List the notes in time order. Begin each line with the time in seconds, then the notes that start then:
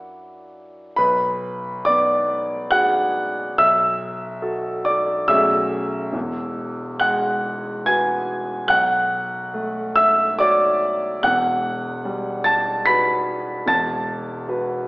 Already playing: F#2 A#3 D4 E4 F#4 D5 F#5
0.96 B1 B4 B5
1.85 B3 D5 D6
2.71 F#4 G#4 F#5 F#6
3.58 B1 E5 E6
4.42 F#4 A4
4.85 D5 D6
5.28 B1 A3 C#4 F#4 G#4 E5 E6
6.13 E1 E2
7.00 G#3 F#5 F#6
7.86 F#4 B4 G#5 G#6
8.68 B1 F#5 F#6
9.54 A3
9.96 E5 E6
10.39 F#4 C#5 D5 D6
11.23 E1 E2 F#5 F#6
12.05 G3
12.44 A5 A6
12.86 F#4 B4 B5 B6
13.66 E1 E2 A5 A6
14.48 F#4 B4